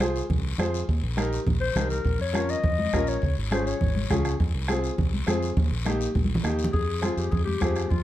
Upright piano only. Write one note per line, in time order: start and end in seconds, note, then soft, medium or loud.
0.00 0.21 F4 medium
0.00 0.21 G#4 medium
0.00 0.21 C5 loud
0.59 0.79 F4 medium
0.59 0.79 G#4 medium
0.59 0.80 C5 medium
1.17 1.38 D#4 medium
1.17 1.38 G4 medium
1.17 1.38 A#4 loud
1.76 1.96 D#4 medium
1.76 1.97 G4 medium
1.76 1.97 A#4 medium
2.33 2.54 C#4 medium
2.33 2.55 F4 medium
2.33 2.55 A#4 medium
2.93 3.14 C#4 medium
2.93 3.14 F4 medium
2.93 3.14 A#4 loud
3.51 3.72 C#4 medium
3.51 3.72 F4 medium
3.51 3.72 G#4 medium
4.10 4.31 C#4 medium
4.10 4.31 F4 medium
4.10 4.31 G#4 medium
4.69 4.89 C4 medium
4.69 4.90 F4 medium
4.69 4.90 G#4 medium
5.26 5.48 C4 medium
5.26 5.48 F4 medium
5.26 5.48 G#4 medium
5.85 6.06 A#3 medium
5.85 6.07 D#4 medium
5.85 6.07 G4 loud
6.43 6.65 A#3 medium
6.43 6.65 D#4 medium
6.43 6.65 G4 medium
7.01 7.23 C4 medium
7.01 7.23 F4 medium
7.01 7.23 G#4 medium
7.61 7.82 C4 medium
7.61 7.82 F4 medium
7.61 7.82 G#4 medium